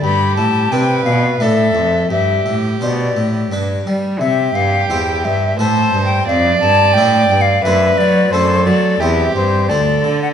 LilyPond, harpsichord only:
<<
  \new Staff \with { instrumentName = "Harpsichord" } { \time 3/4 \key g \mixolydian \tempo 4 = 87 r4 <d' d''>4 <d' d''>4 | r4 <d' c''>4 <d' b'>4 | r4 <e' c''>4 <a e' c''>4 | r4 <a d' d''>4 <a d' c''>4 |
\key d \mixolydian <a d' a'>4 <c' c''>4 <d' c''>4 | }
  \new Staff \with { instrumentName = "Harpsichord" } { \clef bass \time 3/4 \key g \mixolydian g,8 a,8 c8 b,8 a,8 f,8 | g,8 a,8 b,8 a,8 g,8 g8 | c8 g,8 e,8 g,8 a,8 g,8 | f,8 g,8 a,8 g,8 fis,8 fis8 |
\key d \mixolydian fis,8 fis8 e,8 g,8 d,8 d8 | }
>>